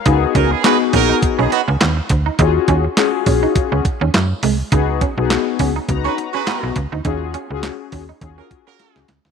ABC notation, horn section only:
X:1
M:4/4
L:1/16
Q:"Swing 16ths" 1/4=103
K:Dbmix
V:1 name="Horn section"
z2 [EGB] [CEA] [GAc] z [EGB]2 z [CEA] [CEG] z4 z | z16 | z8 z [GAc] z [GAc]3 z2 | z8 z [B,GB] z [B,GB]3 z2 |]